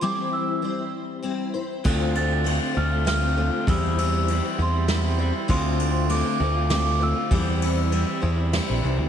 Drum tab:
CC |------|x-----|------|------|
RD |------|-xx-x-|xxx-x-|xxx-x-|
SD |------|----o-|----o-|----o-|
BD |------|o-----|o-----|o-----|

CC |------|
RD |xxx-x-|
SD |----o-|
BD |o-----|